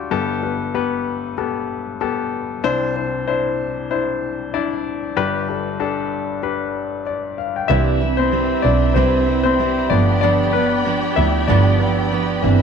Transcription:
0.00 0.13 D4 medium
0.00 0.13 F4 medium
0.00 0.13 F#4 medium
0.00 0.11 G4 medium
0.00 0.11 A4 medium
0.11 2.60 G1 medium
0.11 2.60 G2 medium
0.11 0.40 B3 medium
0.11 0.40 G4 medium
0.11 0.41 A4 loud
0.43 0.72 B3 medium
0.43 0.72 G4 medium
0.43 0.72 B4 medium
0.74 1.33 B3 medium
0.74 1.33 G4 medium
0.74 1.33 B4 medium
1.38 1.96 B3 medium
1.38 1.96 G4 medium
1.38 1.96 A4 medium
2.01 2.59 B3 medium
2.01 2.59 G4 medium
2.01 2.60 A4 medium
2.64 5.13 C2 medium
2.64 5.13 C3 medium
2.64 2.93 D4 medium
2.64 2.93 E4 medium
2.64 2.93 C5 loud
2.96 3.25 D4 medium
2.96 3.25 E4 soft
2.96 3.25 C5 medium
3.27 3.86 D4 medium
3.27 3.86 E4 medium
3.27 3.86 C5 medium
3.91 4.49 D4 medium
3.91 4.49 E4 medium
3.91 4.49 C5 medium
4.54 5.12 D4 medium
4.54 5.12 E4 medium
4.54 5.12 D5 medium
5.16 7.66 G1 medium
5.16 7.66 G2 medium
5.16 5.46 D4 medium
5.16 5.46 G4 medium
5.16 5.46 B4 loud
5.48 5.78 D4 medium
5.48 5.78 G4 medium
5.48 5.78 A4 medium
5.80 6.38 D4 medium
5.80 6.39 G4 medium
5.80 6.39 A4 medium
6.43 7.02 D4 medium
6.43 7.02 G4 medium
6.43 7.02 B4 medium
7.07 7.37 D5 medium
7.38 7.55 F5 medium
7.56 7.86 G5 soft
7.68 8.47 C2 medium
7.68 8.01 C3 medium
7.68 8.60 E3 soft
7.68 8.01 G3 medium
7.68 9.89 C4 medium
7.68 8.02 C4 medium
7.68 8.61 D4 medium
7.68 8.16 E4 medium
7.68 8.01 E4 medium
7.68 12.62 G4 medium
7.68 8.61 B4 soft
7.68 7.99 B4 medium
7.68 8.15 E5 medium
7.68 9.89 E5 medium
7.68 12.62 B5 medium
8.00 8.32 C4 soft
8.00 8.33 E4 medium
8.00 8.32 B4 medium
8.17 8.62 C4 medium
8.17 8.65 C5 medium
8.32 8.64 G3 medium
8.32 8.65 C4 medium
8.32 8.64 E4 medium
8.32 8.63 B4 medium
8.62 8.94 B1 medium
8.62 8.94 D4 medium
8.62 8.96 E4 soft
8.62 8.96 B4 soft
8.62 8.93 D5 medium
8.66 8.95 C4 soft
8.94 9.87 C2 medium
8.94 9.27 C3 medium
8.94 9.28 G3 medium
8.94 9.42 C4 medium
8.94 9.28 C4 medium
8.94 9.28 E4 medium
8.94 9.26 B4 medium
8.94 9.42 C5 medium
9.27 9.59 C4 soft
9.27 9.59 E4 medium
9.27 9.59 B4 medium
9.43 9.88 C4 medium
9.43 9.91 C5 medium
9.59 9.91 G3 medium
9.59 9.91 C4 medium
9.59 9.91 E4 medium
9.59 9.89 B4 medium
9.90 10.99 G1 medium
9.90 11.47 F3 medium
9.90 10.22 F3 soft
9.90 11.47 A3 soft
9.90 10.53 B3 medium
9.90 10.22 B3 medium
9.90 10.23 D4 medium
9.90 10.21 D4 medium
9.90 10.22 B4 medium
9.90 10.19 D5 medium
9.90 12.41 D5 medium
9.90 12.41 G5 medium
10.21 10.54 G2 medium
10.21 10.54 D3 medium
10.21 10.54 F3 medium
10.21 10.55 B3 medium
10.21 10.52 D4 medium
10.21 10.54 D4 medium
10.21 10.53 B4 medium
10.21 10.54 D5 medium
10.53 10.84 F3 soft
10.53 11.13 B3 medium
10.53 10.85 B3 medium
10.53 10.86 D4 medium
10.53 11.13 B4 medium
10.53 10.86 B4 medium
10.85 11.17 F3 medium
10.85 11.17 B3 medium
10.85 11.17 D4 medium
10.85 11.15 B4 medium
11.16 11.48 D2 medium
11.16 11.48 F3 soft
11.16 11.48 B3 medium
11.16 11.49 D4 medium
11.16 11.47 E4 medium
11.16 11.48 B4 medium
11.16 11.49 E5 medium
11.48 12.39 G1 medium
11.48 11.80 G2 medium
11.48 11.80 D3 medium
11.48 11.77 F3 soft
11.48 11.81 F3 medium
11.48 11.77 A3 soft
11.48 11.77 B3 medium
11.48 11.80 B3 medium
11.48 12.40 D4 medium
11.48 11.79 D4 loud
11.48 11.79 B4 loud
11.48 12.39 D5 medium
11.80 12.10 F3 soft
11.80 12.11 B3 medium
11.80 12.12 D4 medium
11.80 12.12 B4 medium
12.11 12.43 F3 medium
12.11 12.44 B3 medium
12.11 12.43 D4 medium
12.11 12.41 B4 medium
12.42 12.62 G1 medium
12.42 12.62 E3 medium
12.42 12.62 G3 soft
12.42 12.62 C4 medium
12.42 12.62 C4 soft
12.42 12.62 D4 medium
12.42 12.62 E4 medium
12.42 12.62 B4 medium
12.42 12.62 B4 soft
12.42 12.62 E5 medium

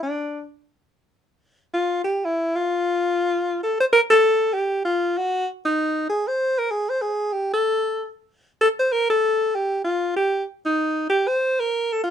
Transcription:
0.03 0.43 D4 medium
1.74 2.02 F4 medium
2.04 2.26 G4 medium
2.25 2.57 E4 medium
2.55 3.60 F4 medium
3.63 3.79 A4 medium
3.80 3.85 C5 medium
3.92 4.00 A#4 loud
4.10 4.55 A4 loud
4.53 4.84 G4 medium
4.85 5.19 F4 medium
5.17 5.47 F#4 medium
5.65 6.05 D#4 medium
6.09 6.29 G#4 medium
6.28 6.60 C5 medium
6.58 6.72 A#4 medium
6.71 6.91 G#4 medium
6.89 7.03 C5 medium
7.02 7.34 G#4 medium
7.33 7.51 G4 medium
7.53 8.11 A4 medium
8.61 8.69 A4 medium
8.79 8.93 C5 medium
8.92 9.09 A#4 loud
9.10 9.56 A4 loud
9.55 9.84 G4 medium
9.84 10.12 F4 medium
10.16 10.44 G4 medium
10.66 11.05 D#4 medium
11.09 11.29 G4 medium
11.27 11.61 C5 medium
11.60 11.94 A#4 medium
11.92 12.02 A4 medium
12.03 12.10 F4 medium

